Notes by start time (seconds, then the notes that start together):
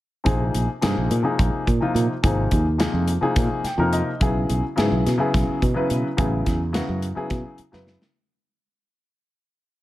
0.24 A#1 C3 F3 A#3 D#4 G#4, kick, closed hi-hat
0.54 A#1, closed hi-hat
0.81 G2 C3 F3 A#3 D#4 G#4, snare, closed hi-hat
0.97 A#1
1.11 A#2, closed hi-hat
1.23 C3 F3 A#3 D#4 G#4
1.39 A#1, kick, closed hi-hat
1.67 A#2, kick, closed hi-hat
1.81 C3 F3 A#3 D#4 F4
1.95 A#2, closed hi-hat
2.23 G#1 C3 F3 A#3 D#4 G#4, kick, closed hi-hat
2.51 D#2, kick, closed hi-hat
2.78 C3 F3 A#3 D#4 G#4, snare, closed hi-hat
2.93 F2
3.08 closed hi-hat
3.21 C3 F3 A#3 D#4 G#4, muted fretless electric bass stroke
3.36 A#2, kick, snare, closed hi-hat
3.64 G5, muted fretless electric bass stroke, snare, closed hi-hat
3.78 F2 C3 F3 A#3 D#4 A#4
3.93 D#5, closed hi-hat
4.20 B1 C#3 F#3 B3 E4 G#4, kick, closed hi-hat
4.50 B1, closed hi-hat
4.76 G#2 C#3 F#3 B3 E4 G#4, snare, closed hi-hat
4.92 B1
5.06 B2, snare, closed hi-hat
5.18 C#3 F#3 B3 E4 G#4
5.34 B1, kick, snare, closed hi-hat
5.62 B2, kick, closed hi-hat
5.74 C#3 F#3 B3 E4 B4
5.90 B2, closed hi-hat
6.17 A1 C#3 F#3 B3 E4 G#4, kick, closed hi-hat
6.46 E2, kick, snare, closed hi-hat
6.73 C#3 F#3 B3 E4 F#4, snare, closed hi-hat
6.89 F#2
7.02 closed hi-hat
7.15 C#3 F#3 B3 E4 G#4, muted fretless electric bass stroke
7.30 B2, kick, snare, closed hi-hat
7.58 muted fretless electric bass stroke, closed hi-hat
7.72 F#2 C#3 F#3 B3 E4 B4, snare
7.87 snare
8.02 snare